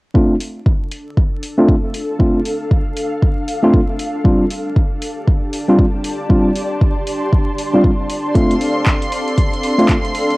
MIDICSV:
0, 0, Header, 1, 6, 480
1, 0, Start_track
1, 0, Key_signature, -1, "minor"
1, 0, Tempo, 512821
1, 137, Time_signature, 4, 2, 24, 8
1, 9708, End_track
2, 0, Start_track
2, 0, Title_t, "Violin section"
2, 0, Program_c, 0, 48
2, 7817, Note_on_c, 0, 84, 77
2, 9708, Note_off_c, 0, 84, 0
2, 9708, End_track
3, 0, Start_track
3, 0, Title_t, "Ambient pad"
3, 0, Program_c, 1, 92
3, 138, Note_on_c, 1, 62, 80
3, 386, Note_on_c, 1, 69, 72
3, 1406, Note_on_c, 1, 77, 77
3, 4205, Note_on_c, 1, 67, 78
3, 4356, Note_on_c, 1, 81, 89
3, 4596, Note_on_c, 1, 74, 84
3, 4618, Note_off_c, 1, 69, 0
3, 5385, Note_on_c, 1, 84, 87
3, 5444, Note_off_c, 1, 77, 0
3, 8332, Note_on_c, 1, 69, 77
3, 8549, Note_off_c, 1, 81, 0
3, 8555, Note_off_c, 1, 84, 0
3, 8614, Note_on_c, 1, 77, 78
3, 8710, Note_off_c, 1, 67, 0
3, 9375, Note_off_c, 1, 74, 0
3, 9708, Note_off_c, 1, 62, 0
3, 9708, Note_off_c, 1, 69, 0
3, 9708, Note_off_c, 1, 77, 0
3, 9708, End_track
4, 0, Start_track
4, 0, Title_t, "Analog synth pad"
4, 0, Program_c, 2, 89
4, 7817, Note_on_c, 2, 60, 77
4, 7817, Note_on_c, 2, 69, 69
4, 7817, Note_on_c, 2, 74, 65
4, 7817, Note_on_c, 2, 77, 86
4, 9708, Note_off_c, 2, 60, 0
4, 9708, Note_off_c, 2, 69, 0
4, 9708, Note_off_c, 2, 74, 0
4, 9708, Note_off_c, 2, 77, 0
4, 9708, End_track
5, 0, Start_track
5, 0, Title_t, "Tine electric piano"
5, 0, Program_c, 3, 4
5, 131, Note_on_c, 3, 57, 75
5, 135, Note_on_c, 3, 60, 68
5, 138, Note_on_c, 3, 62, 72
5, 142, Note_on_c, 3, 65, 85
5, 315, Note_off_c, 3, 57, 0
5, 317, Note_off_c, 3, 60, 0
5, 319, Note_off_c, 3, 62, 0
5, 320, Note_off_c, 3, 65, 0
5, 1478, Note_on_c, 3, 57, 88
5, 1481, Note_on_c, 3, 60, 78
5, 1485, Note_on_c, 3, 62, 80
5, 1488, Note_on_c, 3, 65, 94
5, 1629, Note_off_c, 3, 57, 0
5, 1630, Note_off_c, 3, 60, 0
5, 1632, Note_off_c, 3, 62, 0
5, 1634, Note_off_c, 3, 65, 0
5, 2052, Note_on_c, 3, 57, 75
5, 2055, Note_on_c, 3, 60, 73
5, 2059, Note_on_c, 3, 62, 69
5, 2062, Note_on_c, 3, 65, 86
5, 2235, Note_off_c, 3, 57, 0
5, 2237, Note_off_c, 3, 60, 0
5, 2239, Note_off_c, 3, 62, 0
5, 2240, Note_off_c, 3, 65, 0
5, 3398, Note_on_c, 3, 57, 88
5, 3402, Note_on_c, 3, 60, 78
5, 3405, Note_on_c, 3, 62, 77
5, 3409, Note_on_c, 3, 65, 100
5, 3549, Note_off_c, 3, 57, 0
5, 3551, Note_off_c, 3, 60, 0
5, 3552, Note_off_c, 3, 62, 0
5, 3554, Note_off_c, 3, 65, 0
5, 3972, Note_on_c, 3, 55, 79
5, 3976, Note_on_c, 3, 60, 71
5, 3979, Note_on_c, 3, 62, 74
5, 3983, Note_on_c, 3, 65, 90
5, 4156, Note_off_c, 3, 55, 0
5, 4158, Note_off_c, 3, 60, 0
5, 4159, Note_off_c, 3, 62, 0
5, 4161, Note_off_c, 3, 65, 0
5, 5318, Note_on_c, 3, 55, 84
5, 5321, Note_on_c, 3, 60, 78
5, 5325, Note_on_c, 3, 62, 79
5, 5328, Note_on_c, 3, 65, 99
5, 5469, Note_off_c, 3, 55, 0
5, 5470, Note_off_c, 3, 60, 0
5, 5472, Note_off_c, 3, 62, 0
5, 5474, Note_off_c, 3, 65, 0
5, 5892, Note_on_c, 3, 55, 78
5, 5895, Note_on_c, 3, 60, 73
5, 5899, Note_on_c, 3, 62, 70
5, 5902, Note_on_c, 3, 65, 88
5, 6076, Note_off_c, 3, 55, 0
5, 6077, Note_off_c, 3, 60, 0
5, 6079, Note_off_c, 3, 62, 0
5, 6080, Note_off_c, 3, 65, 0
5, 7238, Note_on_c, 3, 55, 86
5, 7242, Note_on_c, 3, 60, 76
5, 7245, Note_on_c, 3, 62, 82
5, 7249, Note_on_c, 3, 65, 98
5, 7389, Note_off_c, 3, 55, 0
5, 7391, Note_off_c, 3, 60, 0
5, 7393, Note_off_c, 3, 62, 0
5, 7394, Note_off_c, 3, 65, 0
5, 7812, Note_on_c, 3, 57, 84
5, 7815, Note_on_c, 3, 60, 74
5, 7819, Note_on_c, 3, 62, 73
5, 7823, Note_on_c, 3, 65, 92
5, 7995, Note_off_c, 3, 57, 0
5, 7997, Note_off_c, 3, 60, 0
5, 7999, Note_off_c, 3, 62, 0
5, 8001, Note_off_c, 3, 65, 0
5, 9158, Note_on_c, 3, 57, 88
5, 9162, Note_on_c, 3, 60, 82
5, 9165, Note_on_c, 3, 62, 78
5, 9169, Note_on_c, 3, 65, 98
5, 9309, Note_off_c, 3, 57, 0
5, 9311, Note_off_c, 3, 60, 0
5, 9312, Note_off_c, 3, 62, 0
5, 9314, Note_off_c, 3, 65, 0
5, 9708, End_track
6, 0, Start_track
6, 0, Title_t, "Drums"
6, 137, Note_on_c, 9, 36, 102
6, 231, Note_off_c, 9, 36, 0
6, 376, Note_on_c, 9, 46, 95
6, 470, Note_off_c, 9, 46, 0
6, 617, Note_on_c, 9, 36, 112
6, 711, Note_off_c, 9, 36, 0
6, 856, Note_on_c, 9, 46, 88
6, 950, Note_off_c, 9, 46, 0
6, 1097, Note_on_c, 9, 36, 104
6, 1191, Note_off_c, 9, 36, 0
6, 1337, Note_on_c, 9, 46, 97
6, 1430, Note_off_c, 9, 46, 0
6, 1578, Note_on_c, 9, 36, 111
6, 1671, Note_off_c, 9, 36, 0
6, 1817, Note_on_c, 9, 46, 80
6, 1911, Note_off_c, 9, 46, 0
6, 2058, Note_on_c, 9, 36, 107
6, 2151, Note_off_c, 9, 36, 0
6, 2297, Note_on_c, 9, 46, 101
6, 2390, Note_off_c, 9, 46, 0
6, 2538, Note_on_c, 9, 36, 115
6, 2631, Note_off_c, 9, 36, 0
6, 2777, Note_on_c, 9, 46, 89
6, 2871, Note_off_c, 9, 46, 0
6, 3018, Note_on_c, 9, 36, 111
6, 3111, Note_off_c, 9, 36, 0
6, 3258, Note_on_c, 9, 46, 101
6, 3351, Note_off_c, 9, 46, 0
6, 3498, Note_on_c, 9, 36, 114
6, 3592, Note_off_c, 9, 36, 0
6, 3737, Note_on_c, 9, 46, 83
6, 3831, Note_off_c, 9, 46, 0
6, 3978, Note_on_c, 9, 36, 116
6, 4071, Note_off_c, 9, 36, 0
6, 4217, Note_on_c, 9, 46, 101
6, 4311, Note_off_c, 9, 46, 0
6, 4458, Note_on_c, 9, 36, 118
6, 4551, Note_off_c, 9, 36, 0
6, 4697, Note_on_c, 9, 46, 86
6, 4790, Note_off_c, 9, 46, 0
6, 4937, Note_on_c, 9, 36, 108
6, 5031, Note_off_c, 9, 36, 0
6, 5176, Note_on_c, 9, 46, 105
6, 5270, Note_off_c, 9, 46, 0
6, 5417, Note_on_c, 9, 36, 115
6, 5511, Note_off_c, 9, 36, 0
6, 5656, Note_on_c, 9, 46, 91
6, 5750, Note_off_c, 9, 46, 0
6, 5897, Note_on_c, 9, 36, 108
6, 5991, Note_off_c, 9, 36, 0
6, 6137, Note_on_c, 9, 46, 104
6, 6231, Note_off_c, 9, 46, 0
6, 6378, Note_on_c, 9, 36, 120
6, 6471, Note_off_c, 9, 36, 0
6, 6617, Note_on_c, 9, 46, 85
6, 6711, Note_off_c, 9, 46, 0
6, 6858, Note_on_c, 9, 36, 111
6, 6951, Note_off_c, 9, 36, 0
6, 7097, Note_on_c, 9, 46, 104
6, 7191, Note_off_c, 9, 46, 0
6, 7338, Note_on_c, 9, 36, 109
6, 7431, Note_off_c, 9, 36, 0
6, 7577, Note_on_c, 9, 46, 91
6, 7671, Note_off_c, 9, 46, 0
6, 7817, Note_on_c, 9, 42, 73
6, 7818, Note_on_c, 9, 36, 105
6, 7911, Note_off_c, 9, 36, 0
6, 7911, Note_off_c, 9, 42, 0
6, 7963, Note_on_c, 9, 42, 49
6, 8057, Note_off_c, 9, 42, 0
6, 8058, Note_on_c, 9, 46, 101
6, 8151, Note_off_c, 9, 46, 0
6, 8296, Note_on_c, 9, 39, 109
6, 8297, Note_on_c, 9, 36, 111
6, 8297, Note_on_c, 9, 42, 74
6, 8389, Note_off_c, 9, 39, 0
6, 8391, Note_off_c, 9, 36, 0
6, 8391, Note_off_c, 9, 42, 0
6, 8443, Note_on_c, 9, 42, 49
6, 8537, Note_off_c, 9, 42, 0
6, 8537, Note_on_c, 9, 46, 83
6, 8631, Note_off_c, 9, 46, 0
6, 8683, Note_on_c, 9, 42, 34
6, 8776, Note_off_c, 9, 42, 0
6, 8777, Note_on_c, 9, 36, 107
6, 8777, Note_on_c, 9, 42, 70
6, 8870, Note_off_c, 9, 42, 0
6, 8871, Note_off_c, 9, 36, 0
6, 8924, Note_on_c, 9, 42, 47
6, 9017, Note_off_c, 9, 42, 0
6, 9017, Note_on_c, 9, 46, 102
6, 9110, Note_off_c, 9, 46, 0
6, 9164, Note_on_c, 9, 42, 34
6, 9257, Note_off_c, 9, 42, 0
6, 9257, Note_on_c, 9, 36, 111
6, 9257, Note_on_c, 9, 39, 103
6, 9258, Note_on_c, 9, 42, 73
6, 9350, Note_off_c, 9, 39, 0
6, 9351, Note_off_c, 9, 36, 0
6, 9352, Note_off_c, 9, 42, 0
6, 9403, Note_on_c, 9, 42, 48
6, 9497, Note_off_c, 9, 42, 0
6, 9498, Note_on_c, 9, 46, 88
6, 9591, Note_off_c, 9, 46, 0
6, 9644, Note_on_c, 9, 42, 34
6, 9708, Note_off_c, 9, 42, 0
6, 9708, End_track
0, 0, End_of_file